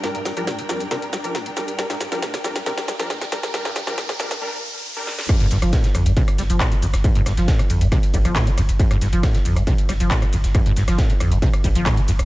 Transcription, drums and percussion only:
0.04 snare, closed hi-hat, shaker
0.15 closed hi-hat
0.25 snare, open hi-hat, shaker
0.37 closed hi-hat, shaker
0.47 snare, closed hi-hat, shaker
0.59 closed hi-hat
0.69 snare, open hi-hat, shaker
0.80 closed hi-hat, shaker
0.91 snare, closed hi-hat, shaker
1.02 closed hi-hat
1.13 snare, open hi-hat, shaker
1.24 closed hi-hat, shaker
1.35 snare, closed hi-hat, shaker
1.46 closed hi-hat
1.57 snare, open hi-hat, shaker
1.68 closed hi-hat, shaker
1.79 snare, closed hi-hat, shaker
1.90 snare, closed hi-hat
2.01 snare, open hi-hat, shaker
2.12 snare, closed hi-hat, shaker
2.22 snare, closed hi-hat, shaker
2.34 snare, closed hi-hat
2.44 snare, open hi-hat, shaker
2.56 snare, closed hi-hat, shaker
2.66 snare, closed hi-hat, shaker
2.78 snare, closed hi-hat
2.88 snare, open hi-hat, shaker
3.00 snare, closed hi-hat, shaker
3.10 snare, closed hi-hat, shaker
3.21 snare, closed hi-hat
3.32 snare, open hi-hat, shaker
3.43 snare, closed hi-hat, shaker
3.54 snare, closed hi-hat, shaker
3.65 snare, closed hi-hat
3.76 snare, open hi-hat, shaker
3.87 snare, closed hi-hat, shaker
3.98 snare, closed hi-hat, shaker
4.09 snare, closed hi-hat
4.20 snare, open hi-hat, shaker
4.31 snare, closed hi-hat, shaker
5.07 snare
5.19 snare
5.29 kick, cross-stick, closed hi-hat, crash, ride, shaker
5.40 closed hi-hat, ride
5.51 snare, open hi-hat, ride, shaker
5.62 cross-stick, closed hi-hat, shaker
5.73 kick, snare, closed hi-hat, ride, shaker
5.84 snare, closed hi-hat
5.95 cross-stick, open hi-hat, ride, shaker
6.06 closed hi-hat, shaker
6.17 kick, closed hi-hat, ride, shaker
6.28 cross-stick, closed hi-hat, ride
6.38 snare, open hi-hat, ride, shaker
6.50 closed hi-hat, shaker
6.60 kick, cross-stick, snare, clap, closed hi-hat, ride, shaker
6.72 closed hi-hat
6.82 open hi-hat, ride, shaker
6.94 cross-stick, snare, closed hi-hat, shaker
7.04 kick, closed hi-hat, ride, shaker
7.15 closed hi-hat, ride
7.26 cross-stick, snare, open hi-hat, ride, shaker
7.37 snare, closed hi-hat, shaker
7.48 kick, snare, closed hi-hat, ride, shaker
7.59 cross-stick, closed hi-hat
7.70 open hi-hat, ride, shaker
7.81 closed hi-hat, shaker
7.92 kick, cross-stick, closed hi-hat, ride, shaker
8.03 closed hi-hat
8.14 kick, open hi-hat, ride, shaker
8.25 cross-stick, closed hi-hat, ride, shaker
8.36 kick, snare, clap, closed hi-hat, ride, shaker
8.47 closed hi-hat
8.58 cross-stick, open hi-hat, ride, shaker
8.69 closed hi-hat, shaker
8.80 kick, closed hi-hat, ride, shaker
8.91 cross-stick, closed hi-hat, ride
9.01 snare, open hi-hat, ride, shaker
9.13 closed hi-hat, shaker
9.23 kick, cross-stick, snare, closed hi-hat, ride, shaker
9.35 snare, closed hi-hat
9.45 open hi-hat, ride, shaker
9.56 cross-stick, closed hi-hat, shaker
9.67 kick, closed hi-hat, ride, shaker
9.78 closed hi-hat, ride
9.89 cross-stick, snare, open hi-hat, ride, shaker
10.00 closed hi-hat, shaker
10.11 kick, snare, clap, closed hi-hat, ride, shaker
10.22 cross-stick, closed hi-hat
10.33 open hi-hat, ride, shaker
10.44 snare, closed hi-hat, shaker
10.55 kick, cross-stick, closed hi-hat, ride, shaker
10.66 closed hi-hat, ride
10.77 snare, open hi-hat, ride, shaker
10.88 cross-stick, snare, closed hi-hat, shaker
10.98 kick, snare, closed hi-hat, ride, shaker
11.10 closed hi-hat
11.20 cross-stick, open hi-hat, ride, shaker
11.32 closed hi-hat, shaker
11.42 kick, closed hi-hat, ride, shaker
11.53 cross-stick, closed hi-hat
11.64 kick, open hi-hat, ride, shaker
11.75 closed hi-hat, ride, shaker
11.86 kick, cross-stick, snare, clap, closed hi-hat, ride, shaker
11.97 closed hi-hat
12.08 open hi-hat, ride, shaker
12.19 cross-stick, closed hi-hat, shaker

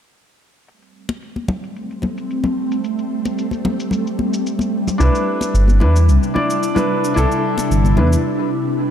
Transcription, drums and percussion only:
0.68 shaker
0.82 shaker
1.09 muted conga, shaker
1.22 shaker
1.36 high conga, shaker
1.48 muted conga, high conga, low conga
1.63 shaker
1.76 shaker
1.91 shaker
2.02 muted conga, high conga, low conga
2.18 shaker
2.30 shaker
2.44 high conga, low conga, shaker
2.72 shaker
2.84 shaker
2.99 shaker
3.25 muted conga, shaker
3.38 shaker
3.51 high conga, shaker
3.65 muted conga, high conga, low conga
3.80 shaker
3.91 low conga, shaker
4.07 shaker
4.19 high conga
4.34 shaker
4.47 shaker
4.59 high conga, shaker
4.88 low conga, shaker
5.01 shaker
5.15 shaker
5.41 muted conga, shaker
5.55 shaker
5.68 high conga, shaker
5.80 muted conga, high conga, low conga
5.96 shaker
6.09 shaker
6.23 shaker
6.36 muted conga, high conga, low conga
6.50 shaker
6.63 shaker
6.76 high conga, low conga, shaker
7.04 shaker
7.17 shaker
7.32 shaker
7.58 muted conga, shaker
7.72 shaker
7.85 high conga, shaker
7.97 muted conga, high conga, low conga
8.13 shaker

